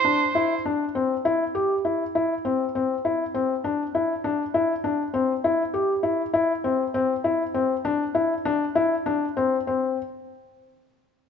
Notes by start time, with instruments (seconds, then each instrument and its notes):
Already playing: oboe C5
0.04 felt piano D4
0.35 felt piano E4
0.66 felt piano D4
0.95 felt piano C4
1.25 felt piano E4
1.55 felt piano G4
1.85 felt piano E4
2.15 felt piano E4
2.45 felt piano C4
2.75 felt piano C4
3.05 felt piano E4
3.34 felt piano C4
3.64 felt piano D4
3.95 felt piano E4
4.24 felt piano D4
4.54 felt piano E4
4.84 felt piano D4
5.14 felt piano C4
5.44 felt piano E4
5.74 felt piano G4
6.03 felt piano E4
6.34 felt piano E4
6.64 felt piano C4
6.94 felt piano C4
7.24 felt piano E4
7.54 felt piano C4
7.85 felt piano D4
8.15 felt piano E4
8.45 felt piano D4
8.75 felt piano E4
9.06 felt piano D4
9.37 felt piano C4
9.67 felt piano C4